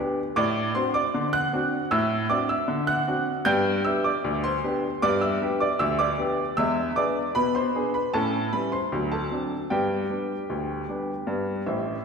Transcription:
upright piano
0.00 B3 D4 G4
0.36 A2 D5 D6
0.75 C4 D4 F#4 C5 C6
0.94 D5 D6
1.14 D3
1.33 F#5 F#6
1.53 C4 D4 F#4
1.91 A2 E5 E6
2.30 C4 D4 F#4 D5 D6
2.49 E5 E6
2.68 D3
2.87 F#5 F#6
3.07 C4 D4 F#4
3.45 G2 B3 G5 G6
3.85 B3 D4 G4 E5 E6
4.04 D5 D6
4.24 D2
4.44 C5 C6
4.64 B3 D4 G4
5.02 G2 B3 D5 D6
5.21 E5 E6
5.41 B3 D4 G4
5.60 D5 D6
5.79 D2 E5 E6
5.99 D5 D6
6.18 B3 D4 G4
6.57 E2 G#3 E5 E6
6.96 B3 D4 G#4 D5 D6
7.35 B2 B4 B5
7.55 C5 C6
7.75 B3 D4 G#4
7.94 B4 B5
8.14 A2 C#4 A4 A5
8.53 G3 C#4 E4 B4 B5
8.72 C5 C6
8.92 D2 F#3
9.12 A4 A5
9.31 F#3 C4 D4
9.70 G2 B3 G4 G5
10.10 G3 B3 D4
10.50 D2
10.89 G3 B3 D4
11.27 G2 B3
11.66 A1 A2 C5 E5

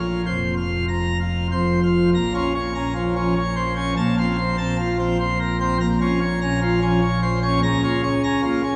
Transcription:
pipe organ
Already playing: A#1 A#2 F4
0.26 F1 F2 C5
0.57 F4
0.88 A#5
1.20 F4
1.52 F1 F2 C5
1.83 F4
2.15 A#1 A#2 A#5
2.34 C#4 F4
2.55 C#5
2.75 C#4 A#5
2.95 F3 F4
3.15 F3 C#4
3.35 C#5
3.56 C5
3.76 C#4 C#5
3.97 A#1 A#2 A5
4.18 C4 F4
4.38 C5
4.58 C4 A5
4.79 F3 F4
4.99 F3 C4
5.20 C5
5.40 A#4
5.60 C4 C5
5.81 A#1 A#2 A#5
6.01 C#4 F4
6.21 C#5
6.41 C#4 A#5
6.61 F3 F4
6.82 F3 C#4
7.02 C#5
7.22 C5
7.43 C#4 C#5
7.63 C#2 C#3 A#5
7.84 C#4 F4
8.03 C#5
8.23 C#4 A#5
8.43 A#3 F4
8.63 C#4

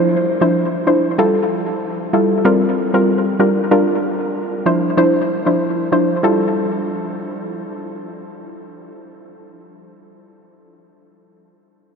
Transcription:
synth pluck
0.41 F3 D4 E4 C5
0.87 F3 D4 E4 C5
1.18 G3 E4 F4 A4
2.13 G3 E4 F4 A4
2.45 G3 C4 F4 A#4
2.94 G3 C4 F4 A#4
3.39 G3 D4 F4 A#4
3.71 G3 D4 F4 A#4
4.66 F3 D4 E4 C5
4.97 F3 D4 E4 C5
5.46 F3 D4 E4 C5
5.92 F3 D4 E4 C5
6.23 G3 E4 F4 A4

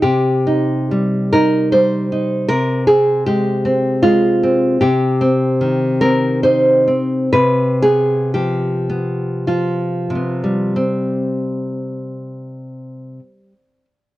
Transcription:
nylon-string guitar
0.02 C3 G4
0.47 D#4
0.91 G3
1.33 D#4 A#4
1.72 G3 C5
2.12 D#4
2.48 C3 A#4
2.87 C4 G#4
3.26 G#3 G4
3.65 C4
4.03 G#3 F4
4.43 C4
4.81 C3 G4
5.21 C4
5.61 D#3
6.01 C4 A#4
6.43 D#4 C5
6.88 C4
7.33 C3 B4
7.82 B3 G#4
8.34 F3 G4
8.89 B3
9.47 F3 F4
10.10 C3
10.15 B3
10.44 G3
10.76 C4

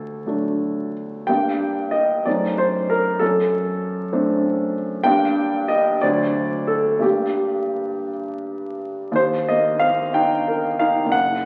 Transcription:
grand piano
Already playing: D2 A4
0.26 F#3 A3 D4
1.27 G2 G3 A#3 D4 G5
1.91 D#5
2.25 F#2 A3 C4 D#4 D5
2.58 C5
2.90 A#4
3.19 F#2 A4
4.12 A3 C4 D4
5.04 G2 A#3 D4 G5
5.68 D#5
6.01 D2 F#3 C4 D4 D5
6.67 A4
6.99 G2 G3 A#3 D4 G4
9.12 D#2 C5
9.49 A#3 D#5
9.79 C4 F5
10.14 D#4 G5
10.48 A#4
10.79 D#4 F5
11.06 F#1
11.12 F#5

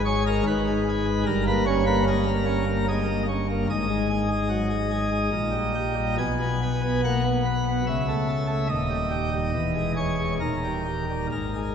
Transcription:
pipe organ
Already playing: G#1 G#2
0.05 G#4 C#5
0.27 G#3 A#4
0.47 G#1 G#2 B4
0.67 G#3
0.89 G#4
1.06 G#3
1.26 G1 G2 A#4
1.47 A#3 B4
1.66 C#4 C#5
1.87 A#3 B4
2.08 G#3 A#4
2.26 A#3
2.46 C#4
2.66 A#3
2.88 G#3 D#5
3.08 A#3
3.28 C#4
3.50 A#3
3.69 G#1 G#2 D#5
3.88 G#3
4.10 G#4
4.28 G#3
4.49 F#3
4.70 G#3
4.90 G#4
5.10 G#3
5.32 A#1 A#2
5.51 G3
5.75 G4
5.95 G3
6.18 B1 B2 G#5
6.40 B3
6.62 B4
6.82 B3
7.04 A#3 F#5
7.25 B3
7.45 B4
7.68 B3
7.87 C#2 C#3 E5
8.08 A3
8.29 A4
8.49 A3
8.69 D#1 D#2 D#5
8.90 G3
9.10 G4
9.32 G3
9.53 E1 E2
9.75 G#3
9.96 G#4 C#5
10.19 G#3
10.40 D#1 D#2 A#4
10.64 G3
10.86 G4
11.10 G3
11.32 G#1 G#2 A#4
11.55 G#3

